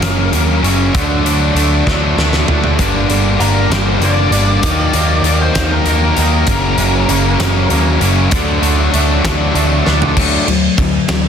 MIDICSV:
0, 0, Header, 1, 7, 480
1, 0, Start_track
1, 0, Tempo, 614754
1, 739, Time_signature, 6, 3, 24, 8
1, 8810, End_track
2, 0, Start_track
2, 0, Title_t, "Lead electric guitar"
2, 0, Program_c, 0, 29
2, 0, Note_on_c, 0, 70, 93
2, 463, Note_off_c, 0, 70, 0
2, 2658, Note_on_c, 0, 70, 88
2, 2892, Note_off_c, 0, 70, 0
2, 2899, Note_on_c, 0, 72, 88
2, 3132, Note_off_c, 0, 72, 0
2, 3162, Note_on_c, 0, 74, 89
2, 4200, Note_off_c, 0, 74, 0
2, 4228, Note_on_c, 0, 72, 84
2, 4457, Note_off_c, 0, 72, 0
2, 4468, Note_on_c, 0, 70, 78
2, 4813, Note_off_c, 0, 70, 0
2, 4837, Note_on_c, 0, 70, 90
2, 6237, Note_off_c, 0, 70, 0
2, 8810, End_track
3, 0, Start_track
3, 0, Title_t, "Distorted electric guitar"
3, 0, Program_c, 1, 30
3, 7939, Note_on_c, 1, 62, 96
3, 8163, Note_off_c, 1, 62, 0
3, 8176, Note_on_c, 1, 57, 78
3, 8392, Note_off_c, 1, 57, 0
3, 8414, Note_on_c, 1, 57, 86
3, 8631, Note_off_c, 1, 57, 0
3, 8655, Note_on_c, 1, 57, 89
3, 8810, Note_off_c, 1, 57, 0
3, 8810, End_track
4, 0, Start_track
4, 0, Title_t, "Distorted electric guitar"
4, 0, Program_c, 2, 30
4, 13, Note_on_c, 2, 42, 81
4, 14, Note_on_c, 2, 49, 75
4, 19, Note_on_c, 2, 54, 83
4, 23, Note_on_c, 2, 58, 88
4, 27, Note_on_c, 2, 61, 79
4, 245, Note_off_c, 2, 42, 0
4, 248, Note_off_c, 2, 49, 0
4, 253, Note_off_c, 2, 54, 0
4, 254, Note_off_c, 2, 61, 0
4, 254, Note_on_c, 2, 42, 84
4, 256, Note_off_c, 2, 58, 0
4, 257, Note_on_c, 2, 49, 88
4, 263, Note_on_c, 2, 54, 101
4, 263, Note_on_c, 2, 61, 97
4, 265, Note_on_c, 2, 58, 98
4, 483, Note_off_c, 2, 42, 0
4, 488, Note_off_c, 2, 49, 0
4, 492, Note_off_c, 2, 54, 0
4, 492, Note_on_c, 2, 42, 74
4, 496, Note_off_c, 2, 58, 0
4, 497, Note_off_c, 2, 61, 0
4, 497, Note_on_c, 2, 49, 91
4, 501, Note_on_c, 2, 54, 87
4, 506, Note_on_c, 2, 58, 85
4, 506, Note_on_c, 2, 61, 91
4, 721, Note_off_c, 2, 42, 0
4, 723, Note_off_c, 2, 49, 0
4, 726, Note_off_c, 2, 54, 0
4, 728, Note_off_c, 2, 58, 0
4, 728, Note_off_c, 2, 61, 0
4, 733, Note_on_c, 2, 50, 99
4, 737, Note_on_c, 2, 54, 88
4, 741, Note_on_c, 2, 57, 96
4, 745, Note_on_c, 2, 62, 93
4, 966, Note_off_c, 2, 50, 0
4, 969, Note_off_c, 2, 54, 0
4, 970, Note_off_c, 2, 57, 0
4, 975, Note_on_c, 2, 50, 76
4, 977, Note_off_c, 2, 62, 0
4, 979, Note_on_c, 2, 54, 81
4, 980, Note_on_c, 2, 57, 86
4, 980, Note_on_c, 2, 62, 82
4, 1198, Note_off_c, 2, 50, 0
4, 1198, Note_off_c, 2, 54, 0
4, 1204, Note_off_c, 2, 57, 0
4, 1207, Note_on_c, 2, 50, 81
4, 1208, Note_on_c, 2, 54, 81
4, 1212, Note_off_c, 2, 62, 0
4, 1214, Note_on_c, 2, 57, 87
4, 1215, Note_on_c, 2, 62, 98
4, 1443, Note_off_c, 2, 50, 0
4, 1445, Note_off_c, 2, 54, 0
4, 1447, Note_off_c, 2, 57, 0
4, 1452, Note_on_c, 2, 50, 81
4, 1454, Note_off_c, 2, 62, 0
4, 1454, Note_on_c, 2, 54, 80
4, 1456, Note_on_c, 2, 57, 84
4, 1463, Note_on_c, 2, 62, 86
4, 1683, Note_off_c, 2, 50, 0
4, 1687, Note_off_c, 2, 54, 0
4, 1691, Note_off_c, 2, 57, 0
4, 1692, Note_on_c, 2, 50, 94
4, 1694, Note_off_c, 2, 62, 0
4, 1696, Note_on_c, 2, 54, 96
4, 1700, Note_on_c, 2, 57, 94
4, 1704, Note_on_c, 2, 62, 95
4, 1923, Note_off_c, 2, 50, 0
4, 1925, Note_off_c, 2, 54, 0
4, 1932, Note_off_c, 2, 57, 0
4, 1932, Note_on_c, 2, 50, 82
4, 1933, Note_off_c, 2, 62, 0
4, 1935, Note_on_c, 2, 54, 82
4, 1941, Note_on_c, 2, 57, 85
4, 1942, Note_on_c, 2, 62, 86
4, 2161, Note_off_c, 2, 50, 0
4, 2163, Note_off_c, 2, 54, 0
4, 2166, Note_off_c, 2, 57, 0
4, 2166, Note_off_c, 2, 62, 0
4, 2171, Note_on_c, 2, 43, 87
4, 2178, Note_on_c, 2, 50, 91
4, 2184, Note_on_c, 2, 55, 86
4, 2184, Note_on_c, 2, 58, 88
4, 2187, Note_on_c, 2, 62, 104
4, 2408, Note_off_c, 2, 43, 0
4, 2410, Note_off_c, 2, 50, 0
4, 2413, Note_off_c, 2, 55, 0
4, 2417, Note_off_c, 2, 62, 0
4, 2418, Note_on_c, 2, 43, 74
4, 2419, Note_on_c, 2, 50, 83
4, 2422, Note_on_c, 2, 55, 88
4, 2423, Note_off_c, 2, 58, 0
4, 2426, Note_on_c, 2, 58, 89
4, 2426, Note_on_c, 2, 62, 81
4, 2640, Note_off_c, 2, 43, 0
4, 2646, Note_off_c, 2, 50, 0
4, 2649, Note_on_c, 2, 43, 76
4, 2651, Note_off_c, 2, 55, 0
4, 2651, Note_off_c, 2, 62, 0
4, 2656, Note_on_c, 2, 50, 86
4, 2659, Note_off_c, 2, 58, 0
4, 2660, Note_on_c, 2, 55, 87
4, 2660, Note_on_c, 2, 62, 87
4, 2662, Note_on_c, 2, 58, 93
4, 2880, Note_off_c, 2, 43, 0
4, 2884, Note_off_c, 2, 50, 0
4, 2888, Note_off_c, 2, 55, 0
4, 2889, Note_on_c, 2, 43, 82
4, 2893, Note_on_c, 2, 50, 84
4, 2894, Note_off_c, 2, 62, 0
4, 2897, Note_off_c, 2, 58, 0
4, 2897, Note_on_c, 2, 55, 79
4, 2900, Note_on_c, 2, 58, 90
4, 2903, Note_on_c, 2, 62, 77
4, 3125, Note_off_c, 2, 43, 0
4, 3130, Note_off_c, 2, 50, 0
4, 3135, Note_off_c, 2, 55, 0
4, 3135, Note_on_c, 2, 43, 84
4, 3136, Note_off_c, 2, 62, 0
4, 3139, Note_on_c, 2, 50, 91
4, 3142, Note_off_c, 2, 58, 0
4, 3145, Note_on_c, 2, 55, 89
4, 3145, Note_on_c, 2, 58, 90
4, 3146, Note_on_c, 2, 62, 99
4, 3373, Note_off_c, 2, 43, 0
4, 3376, Note_off_c, 2, 50, 0
4, 3380, Note_off_c, 2, 55, 0
4, 3382, Note_on_c, 2, 43, 76
4, 3383, Note_off_c, 2, 62, 0
4, 3385, Note_on_c, 2, 50, 79
4, 3389, Note_on_c, 2, 55, 91
4, 3391, Note_off_c, 2, 58, 0
4, 3392, Note_on_c, 2, 62, 84
4, 3394, Note_on_c, 2, 58, 95
4, 3607, Note_off_c, 2, 43, 0
4, 3608, Note_off_c, 2, 50, 0
4, 3610, Note_off_c, 2, 55, 0
4, 3611, Note_off_c, 2, 62, 0
4, 3615, Note_on_c, 2, 51, 85
4, 3617, Note_off_c, 2, 58, 0
4, 3619, Note_on_c, 2, 54, 89
4, 3620, Note_on_c, 2, 58, 101
4, 3624, Note_on_c, 2, 63, 106
4, 3847, Note_off_c, 2, 51, 0
4, 3856, Note_on_c, 2, 51, 74
4, 3859, Note_off_c, 2, 63, 0
4, 3861, Note_off_c, 2, 54, 0
4, 3861, Note_off_c, 2, 58, 0
4, 3864, Note_on_c, 2, 54, 83
4, 3864, Note_on_c, 2, 58, 85
4, 3868, Note_on_c, 2, 63, 95
4, 4092, Note_off_c, 2, 51, 0
4, 4101, Note_off_c, 2, 63, 0
4, 4102, Note_on_c, 2, 51, 81
4, 4103, Note_off_c, 2, 54, 0
4, 4107, Note_on_c, 2, 54, 87
4, 4108, Note_off_c, 2, 58, 0
4, 4111, Note_on_c, 2, 63, 101
4, 4112, Note_on_c, 2, 58, 98
4, 4328, Note_off_c, 2, 51, 0
4, 4337, Note_on_c, 2, 51, 78
4, 4338, Note_off_c, 2, 58, 0
4, 4340, Note_off_c, 2, 54, 0
4, 4341, Note_off_c, 2, 63, 0
4, 4343, Note_on_c, 2, 54, 88
4, 4347, Note_on_c, 2, 58, 82
4, 4350, Note_on_c, 2, 63, 99
4, 4568, Note_off_c, 2, 51, 0
4, 4575, Note_off_c, 2, 58, 0
4, 4575, Note_off_c, 2, 63, 0
4, 4577, Note_on_c, 2, 51, 83
4, 4579, Note_off_c, 2, 54, 0
4, 4582, Note_on_c, 2, 54, 102
4, 4584, Note_on_c, 2, 58, 100
4, 4585, Note_on_c, 2, 63, 98
4, 4803, Note_off_c, 2, 51, 0
4, 4811, Note_off_c, 2, 58, 0
4, 4812, Note_off_c, 2, 54, 0
4, 4812, Note_on_c, 2, 51, 88
4, 4814, Note_off_c, 2, 63, 0
4, 4815, Note_on_c, 2, 54, 85
4, 4820, Note_on_c, 2, 58, 91
4, 4823, Note_on_c, 2, 63, 89
4, 5041, Note_off_c, 2, 51, 0
4, 5046, Note_off_c, 2, 58, 0
4, 5047, Note_off_c, 2, 63, 0
4, 5056, Note_on_c, 2, 42, 85
4, 5058, Note_off_c, 2, 54, 0
4, 5059, Note_on_c, 2, 49, 88
4, 5061, Note_on_c, 2, 54, 104
4, 5065, Note_on_c, 2, 58, 110
4, 5065, Note_on_c, 2, 61, 104
4, 5285, Note_off_c, 2, 42, 0
4, 5287, Note_off_c, 2, 49, 0
4, 5295, Note_on_c, 2, 42, 76
4, 5297, Note_on_c, 2, 49, 87
4, 5298, Note_off_c, 2, 58, 0
4, 5298, Note_off_c, 2, 61, 0
4, 5299, Note_off_c, 2, 54, 0
4, 5302, Note_on_c, 2, 54, 77
4, 5307, Note_on_c, 2, 61, 94
4, 5308, Note_on_c, 2, 58, 93
4, 5524, Note_off_c, 2, 42, 0
4, 5528, Note_off_c, 2, 49, 0
4, 5533, Note_off_c, 2, 58, 0
4, 5533, Note_on_c, 2, 42, 89
4, 5534, Note_off_c, 2, 54, 0
4, 5535, Note_off_c, 2, 61, 0
4, 5537, Note_on_c, 2, 49, 79
4, 5537, Note_on_c, 2, 54, 89
4, 5542, Note_on_c, 2, 58, 81
4, 5544, Note_on_c, 2, 61, 93
4, 5761, Note_off_c, 2, 42, 0
4, 5765, Note_off_c, 2, 49, 0
4, 5770, Note_on_c, 2, 42, 89
4, 5771, Note_off_c, 2, 58, 0
4, 5774, Note_off_c, 2, 54, 0
4, 5774, Note_on_c, 2, 49, 77
4, 5775, Note_off_c, 2, 61, 0
4, 5777, Note_on_c, 2, 54, 91
4, 5781, Note_on_c, 2, 58, 89
4, 5784, Note_on_c, 2, 61, 95
4, 5996, Note_off_c, 2, 42, 0
4, 5999, Note_off_c, 2, 49, 0
4, 6003, Note_off_c, 2, 58, 0
4, 6005, Note_on_c, 2, 42, 96
4, 6008, Note_on_c, 2, 49, 87
4, 6010, Note_off_c, 2, 54, 0
4, 6011, Note_off_c, 2, 61, 0
4, 6013, Note_on_c, 2, 58, 97
4, 6014, Note_on_c, 2, 54, 98
4, 6020, Note_on_c, 2, 61, 109
4, 6243, Note_off_c, 2, 42, 0
4, 6246, Note_off_c, 2, 49, 0
4, 6252, Note_off_c, 2, 58, 0
4, 6252, Note_on_c, 2, 42, 92
4, 6256, Note_off_c, 2, 61, 0
4, 6256, Note_on_c, 2, 49, 82
4, 6257, Note_off_c, 2, 54, 0
4, 6260, Note_on_c, 2, 54, 91
4, 6262, Note_on_c, 2, 58, 80
4, 6265, Note_on_c, 2, 61, 91
4, 6481, Note_off_c, 2, 42, 0
4, 6481, Note_off_c, 2, 49, 0
4, 6482, Note_off_c, 2, 54, 0
4, 6484, Note_on_c, 2, 50, 87
4, 6485, Note_on_c, 2, 54, 101
4, 6486, Note_off_c, 2, 58, 0
4, 6488, Note_off_c, 2, 61, 0
4, 6490, Note_on_c, 2, 57, 96
4, 6495, Note_on_c, 2, 62, 104
4, 6714, Note_off_c, 2, 50, 0
4, 6719, Note_off_c, 2, 54, 0
4, 6723, Note_off_c, 2, 57, 0
4, 6723, Note_off_c, 2, 62, 0
4, 6723, Note_on_c, 2, 50, 82
4, 6728, Note_on_c, 2, 54, 89
4, 6732, Note_on_c, 2, 57, 85
4, 6732, Note_on_c, 2, 62, 104
4, 6955, Note_off_c, 2, 50, 0
4, 6957, Note_off_c, 2, 54, 0
4, 6963, Note_off_c, 2, 57, 0
4, 6964, Note_off_c, 2, 62, 0
4, 6964, Note_on_c, 2, 50, 80
4, 6966, Note_on_c, 2, 54, 90
4, 6973, Note_on_c, 2, 57, 95
4, 6973, Note_on_c, 2, 62, 97
4, 7194, Note_off_c, 2, 50, 0
4, 7202, Note_off_c, 2, 54, 0
4, 7203, Note_on_c, 2, 50, 85
4, 7205, Note_off_c, 2, 57, 0
4, 7208, Note_off_c, 2, 62, 0
4, 7212, Note_on_c, 2, 54, 87
4, 7215, Note_on_c, 2, 57, 98
4, 7217, Note_on_c, 2, 62, 91
4, 7445, Note_off_c, 2, 50, 0
4, 7450, Note_off_c, 2, 54, 0
4, 7451, Note_off_c, 2, 57, 0
4, 7453, Note_off_c, 2, 62, 0
4, 7455, Note_on_c, 2, 50, 91
4, 7459, Note_on_c, 2, 54, 103
4, 7460, Note_on_c, 2, 57, 103
4, 7462, Note_on_c, 2, 62, 101
4, 7679, Note_off_c, 2, 50, 0
4, 7686, Note_off_c, 2, 54, 0
4, 7687, Note_off_c, 2, 62, 0
4, 7688, Note_off_c, 2, 57, 0
4, 7689, Note_on_c, 2, 50, 84
4, 7695, Note_on_c, 2, 54, 94
4, 7697, Note_on_c, 2, 62, 91
4, 7698, Note_on_c, 2, 57, 91
4, 7918, Note_off_c, 2, 50, 0
4, 7922, Note_off_c, 2, 54, 0
4, 7922, Note_off_c, 2, 62, 0
4, 7923, Note_off_c, 2, 57, 0
4, 7934, Note_on_c, 2, 50, 85
4, 7941, Note_on_c, 2, 54, 92
4, 7944, Note_on_c, 2, 57, 108
4, 8161, Note_off_c, 2, 50, 0
4, 8164, Note_off_c, 2, 54, 0
4, 8166, Note_off_c, 2, 57, 0
4, 8176, Note_on_c, 2, 50, 72
4, 8179, Note_on_c, 2, 54, 82
4, 8392, Note_off_c, 2, 50, 0
4, 8393, Note_off_c, 2, 54, 0
4, 8412, Note_on_c, 2, 50, 79
4, 8418, Note_on_c, 2, 54, 91
4, 8630, Note_off_c, 2, 50, 0
4, 8633, Note_off_c, 2, 54, 0
4, 8652, Note_on_c, 2, 50, 72
4, 8654, Note_on_c, 2, 54, 83
4, 8810, Note_off_c, 2, 50, 0
4, 8810, Note_off_c, 2, 54, 0
4, 8810, End_track
5, 0, Start_track
5, 0, Title_t, "Clean electric guitar"
5, 0, Program_c, 3, 27
5, 0, Note_on_c, 3, 42, 72
5, 0, Note_on_c, 3, 49, 67
5, 0, Note_on_c, 3, 58, 71
5, 255, Note_off_c, 3, 58, 0
5, 493, Note_off_c, 3, 42, 0
5, 727, Note_off_c, 3, 49, 0
5, 8810, End_track
6, 0, Start_track
6, 0, Title_t, "Picked electric bass"
6, 0, Program_c, 4, 34
6, 10, Note_on_c, 4, 30, 89
6, 206, Note_off_c, 4, 30, 0
6, 258, Note_on_c, 4, 39, 84
6, 451, Note_off_c, 4, 39, 0
6, 493, Note_on_c, 4, 30, 89
6, 688, Note_off_c, 4, 30, 0
6, 741, Note_on_c, 4, 38, 87
6, 933, Note_off_c, 4, 38, 0
6, 966, Note_on_c, 4, 38, 79
6, 1164, Note_off_c, 4, 38, 0
6, 1208, Note_on_c, 4, 38, 96
6, 1405, Note_off_c, 4, 38, 0
6, 1460, Note_on_c, 4, 38, 86
6, 1652, Note_off_c, 4, 38, 0
6, 1692, Note_on_c, 4, 38, 77
6, 1888, Note_off_c, 4, 38, 0
6, 1945, Note_on_c, 4, 38, 89
6, 2136, Note_off_c, 4, 38, 0
6, 2182, Note_on_c, 4, 31, 91
6, 2374, Note_off_c, 4, 31, 0
6, 2423, Note_on_c, 4, 31, 81
6, 2614, Note_off_c, 4, 31, 0
6, 2656, Note_on_c, 4, 31, 98
6, 2850, Note_off_c, 4, 31, 0
6, 2891, Note_on_c, 4, 31, 93
6, 3087, Note_off_c, 4, 31, 0
6, 3122, Note_on_c, 4, 30, 83
6, 3322, Note_off_c, 4, 30, 0
6, 3363, Note_on_c, 4, 31, 87
6, 3563, Note_off_c, 4, 31, 0
6, 3614, Note_on_c, 4, 39, 90
6, 3809, Note_off_c, 4, 39, 0
6, 3850, Note_on_c, 4, 39, 80
6, 4047, Note_off_c, 4, 39, 0
6, 4077, Note_on_c, 4, 39, 102
6, 4279, Note_off_c, 4, 39, 0
6, 4333, Note_on_c, 4, 39, 91
6, 4529, Note_off_c, 4, 39, 0
6, 4575, Note_on_c, 4, 39, 83
6, 4770, Note_off_c, 4, 39, 0
6, 4821, Note_on_c, 4, 39, 90
6, 5013, Note_off_c, 4, 39, 0
6, 5061, Note_on_c, 4, 30, 94
6, 5253, Note_off_c, 4, 30, 0
6, 5292, Note_on_c, 4, 30, 94
6, 5488, Note_off_c, 4, 30, 0
6, 5531, Note_on_c, 4, 30, 105
6, 5727, Note_off_c, 4, 30, 0
6, 5774, Note_on_c, 4, 30, 88
6, 5969, Note_off_c, 4, 30, 0
6, 6020, Note_on_c, 4, 39, 82
6, 6212, Note_off_c, 4, 39, 0
6, 6257, Note_on_c, 4, 30, 81
6, 6451, Note_off_c, 4, 30, 0
6, 6497, Note_on_c, 4, 38, 95
6, 6691, Note_off_c, 4, 38, 0
6, 6731, Note_on_c, 4, 38, 94
6, 6927, Note_off_c, 4, 38, 0
6, 6978, Note_on_c, 4, 38, 107
6, 7171, Note_off_c, 4, 38, 0
6, 7216, Note_on_c, 4, 38, 86
6, 7409, Note_off_c, 4, 38, 0
6, 7456, Note_on_c, 4, 38, 87
6, 7650, Note_off_c, 4, 38, 0
6, 7706, Note_on_c, 4, 38, 88
6, 7896, Note_off_c, 4, 38, 0
6, 7938, Note_on_c, 4, 38, 94
6, 8083, Note_off_c, 4, 38, 0
6, 8183, Note_on_c, 4, 38, 89
6, 8326, Note_off_c, 4, 38, 0
6, 8419, Note_on_c, 4, 38, 98
6, 8563, Note_off_c, 4, 38, 0
6, 8659, Note_on_c, 4, 38, 95
6, 8803, Note_off_c, 4, 38, 0
6, 8810, End_track
7, 0, Start_track
7, 0, Title_t, "Drums"
7, 18, Note_on_c, 9, 42, 94
7, 20, Note_on_c, 9, 38, 109
7, 96, Note_off_c, 9, 42, 0
7, 98, Note_off_c, 9, 38, 0
7, 257, Note_on_c, 9, 42, 73
7, 335, Note_off_c, 9, 42, 0
7, 503, Note_on_c, 9, 42, 71
7, 581, Note_off_c, 9, 42, 0
7, 739, Note_on_c, 9, 42, 91
7, 740, Note_on_c, 9, 36, 115
7, 817, Note_off_c, 9, 42, 0
7, 818, Note_off_c, 9, 36, 0
7, 984, Note_on_c, 9, 42, 68
7, 1062, Note_off_c, 9, 42, 0
7, 1222, Note_on_c, 9, 42, 72
7, 1300, Note_off_c, 9, 42, 0
7, 1459, Note_on_c, 9, 36, 75
7, 1466, Note_on_c, 9, 38, 55
7, 1537, Note_off_c, 9, 36, 0
7, 1544, Note_off_c, 9, 38, 0
7, 1706, Note_on_c, 9, 38, 79
7, 1784, Note_off_c, 9, 38, 0
7, 1819, Note_on_c, 9, 38, 73
7, 1897, Note_off_c, 9, 38, 0
7, 1938, Note_on_c, 9, 43, 93
7, 2016, Note_off_c, 9, 43, 0
7, 2058, Note_on_c, 9, 43, 82
7, 2136, Note_off_c, 9, 43, 0
7, 2177, Note_on_c, 9, 42, 96
7, 2179, Note_on_c, 9, 36, 107
7, 2255, Note_off_c, 9, 42, 0
7, 2257, Note_off_c, 9, 36, 0
7, 2418, Note_on_c, 9, 42, 68
7, 2496, Note_off_c, 9, 42, 0
7, 2658, Note_on_c, 9, 42, 71
7, 2736, Note_off_c, 9, 42, 0
7, 2901, Note_on_c, 9, 42, 89
7, 2903, Note_on_c, 9, 38, 104
7, 2979, Note_off_c, 9, 42, 0
7, 2981, Note_off_c, 9, 38, 0
7, 3136, Note_on_c, 9, 42, 78
7, 3214, Note_off_c, 9, 42, 0
7, 3375, Note_on_c, 9, 42, 75
7, 3453, Note_off_c, 9, 42, 0
7, 3615, Note_on_c, 9, 42, 108
7, 3617, Note_on_c, 9, 36, 120
7, 3693, Note_off_c, 9, 42, 0
7, 3695, Note_off_c, 9, 36, 0
7, 3853, Note_on_c, 9, 42, 82
7, 3931, Note_off_c, 9, 42, 0
7, 4093, Note_on_c, 9, 42, 72
7, 4171, Note_off_c, 9, 42, 0
7, 4335, Note_on_c, 9, 42, 97
7, 4337, Note_on_c, 9, 36, 76
7, 4338, Note_on_c, 9, 38, 110
7, 4413, Note_off_c, 9, 42, 0
7, 4415, Note_off_c, 9, 36, 0
7, 4416, Note_off_c, 9, 38, 0
7, 4573, Note_on_c, 9, 42, 72
7, 4651, Note_off_c, 9, 42, 0
7, 4814, Note_on_c, 9, 42, 73
7, 4893, Note_off_c, 9, 42, 0
7, 5050, Note_on_c, 9, 42, 99
7, 5056, Note_on_c, 9, 36, 118
7, 5128, Note_off_c, 9, 42, 0
7, 5134, Note_off_c, 9, 36, 0
7, 5292, Note_on_c, 9, 42, 73
7, 5370, Note_off_c, 9, 42, 0
7, 5536, Note_on_c, 9, 42, 74
7, 5614, Note_off_c, 9, 42, 0
7, 5777, Note_on_c, 9, 42, 91
7, 5779, Note_on_c, 9, 38, 102
7, 5855, Note_off_c, 9, 42, 0
7, 5857, Note_off_c, 9, 38, 0
7, 6014, Note_on_c, 9, 42, 68
7, 6092, Note_off_c, 9, 42, 0
7, 6255, Note_on_c, 9, 42, 73
7, 6333, Note_off_c, 9, 42, 0
7, 6491, Note_on_c, 9, 42, 101
7, 6497, Note_on_c, 9, 36, 115
7, 6569, Note_off_c, 9, 42, 0
7, 6575, Note_off_c, 9, 36, 0
7, 6737, Note_on_c, 9, 42, 74
7, 6815, Note_off_c, 9, 42, 0
7, 6978, Note_on_c, 9, 42, 85
7, 7056, Note_off_c, 9, 42, 0
7, 7219, Note_on_c, 9, 36, 81
7, 7221, Note_on_c, 9, 42, 96
7, 7224, Note_on_c, 9, 38, 112
7, 7297, Note_off_c, 9, 36, 0
7, 7299, Note_off_c, 9, 42, 0
7, 7302, Note_off_c, 9, 38, 0
7, 7460, Note_on_c, 9, 42, 80
7, 7538, Note_off_c, 9, 42, 0
7, 7702, Note_on_c, 9, 38, 63
7, 7780, Note_off_c, 9, 38, 0
7, 7823, Note_on_c, 9, 43, 93
7, 7901, Note_off_c, 9, 43, 0
7, 7938, Note_on_c, 9, 49, 122
7, 7939, Note_on_c, 9, 36, 107
7, 8016, Note_off_c, 9, 49, 0
7, 8017, Note_off_c, 9, 36, 0
7, 8182, Note_on_c, 9, 51, 75
7, 8260, Note_off_c, 9, 51, 0
7, 8417, Note_on_c, 9, 36, 94
7, 8419, Note_on_c, 9, 51, 83
7, 8495, Note_off_c, 9, 36, 0
7, 8497, Note_off_c, 9, 51, 0
7, 8655, Note_on_c, 9, 51, 96
7, 8658, Note_on_c, 9, 38, 120
7, 8733, Note_off_c, 9, 51, 0
7, 8736, Note_off_c, 9, 38, 0
7, 8810, End_track
0, 0, End_of_file